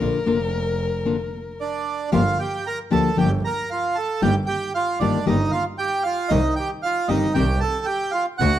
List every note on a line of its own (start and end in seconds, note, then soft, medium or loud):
0.00 0.24 A#1 medium
0.00 0.18 D3 medium
0.00 0.18 A#3 medium
0.00 0.19 D4 medium
0.00 0.19 F4 medium
0.00 1.61 A#4 medium
0.26 1.03 F1 medium
0.26 0.36 D3 medium
0.26 0.36 A#3 medium
0.26 0.36 D4 medium
0.26 0.37 F4 medium
1.05 1.15 D3 medium
1.05 1.15 A#3 medium
1.05 1.16 D4 medium
1.05 1.16 F4 medium
1.60 2.10 D4 soft
1.60 2.10 D5 medium
2.12 2.36 G1 loud
2.12 2.22 D3 medium
2.12 2.22 F3 medium
2.12 2.22 A#3 medium
2.12 2.22 D4 medium
2.12 2.38 F4 medium
2.12 2.22 G4 medium
2.12 2.40 F5 medium
2.39 2.65 G4 medium
2.39 2.67 G5 medium
2.67 2.79 A#4 medium
2.67 2.78 A#5 medium
2.90 3.14 D2 medium
2.90 3.08 D3 medium
2.90 3.09 F3 medium
2.90 3.09 A#3 medium
2.90 3.09 D4 medium
2.90 3.09 G4 medium
2.90 3.17 A4 medium
2.90 3.17 A5 medium
3.17 3.40 G1 loud
3.17 3.27 D3 medium
3.17 3.27 F3 medium
3.17 3.27 A#3 medium
3.17 3.27 D4 medium
3.17 3.27 G4 medium
3.17 3.31 G4 medium
3.17 3.30 G5 medium
3.45 3.70 A#4 medium
3.45 3.69 A#5 medium
3.70 3.96 F4 medium
3.70 3.97 F5 medium
3.95 4.22 A4 medium
3.95 4.20 A5 medium
4.22 4.45 G1 medium
4.22 4.31 D#3 medium
4.22 4.31 G3 medium
4.22 4.32 A#3 medium
4.22 4.31 F4 loud
4.22 4.32 G4 medium
4.22 4.35 G4 medium
4.22 4.34 G5 loud
4.46 4.73 G4 medium
4.46 4.72 G5 medium
4.75 5.00 F4 medium
4.75 4.99 F5 medium
5.00 5.23 G1 medium
5.00 5.17 D#3 medium
5.00 5.18 G3 medium
5.00 5.18 A#3 medium
5.00 5.26 D4 medium
5.00 5.18 F4 medium
5.00 5.18 G4 medium
5.00 5.25 D5 medium
5.26 5.48 G1 medium
5.26 5.35 D#3 medium
5.26 5.36 G3 medium
5.26 5.36 A#3 medium
5.26 5.52 D#4 medium
5.26 5.36 F4 medium
5.26 5.36 G4 loud
5.26 5.51 D#5 medium
5.51 5.65 F4 medium
5.51 5.63 F5 medium
5.78 6.04 G4 medium
5.78 6.03 G5 medium
6.03 6.30 F4 medium
6.03 6.31 F5 medium
6.29 6.53 C2 loud
6.29 6.40 C3 medium
6.29 6.40 D#3 medium
6.29 6.40 G3 medium
6.29 6.40 C4 medium
6.29 6.55 D#4 medium
6.29 6.40 G4 medium
6.29 6.54 D#5 medium
6.56 6.71 G4 medium
6.56 6.68 G5 medium
6.82 7.09 F4 medium
6.82 7.07 F5 medium
7.08 7.31 G1 medium
7.08 7.26 C3 medium
7.08 7.26 D#3 medium
7.08 7.26 G3 medium
7.08 7.26 C4 medium
7.08 7.34 D#4 medium
7.08 7.26 G4 medium
7.08 7.33 D#5 medium
7.34 7.58 C2 loud
7.34 7.44 C3 medium
7.34 7.44 D#3 medium
7.34 7.45 G3 medium
7.34 7.45 C4 medium
7.34 7.45 G4 medium
7.34 7.61 G4 medium
7.34 7.59 G5 medium
7.60 7.87 A4 medium
7.60 7.85 A5 medium
7.85 8.12 G4 medium
7.85 8.11 G5 medium
8.11 8.26 F4 medium
8.11 8.24 F5 medium
8.38 8.59 D2 medium
8.38 8.49 D3 medium
8.38 8.49 A3 medium
8.38 8.49 D4 medium
8.38 8.50 F#4 medium
8.38 8.59 F#4 medium
8.38 8.59 F#5 loud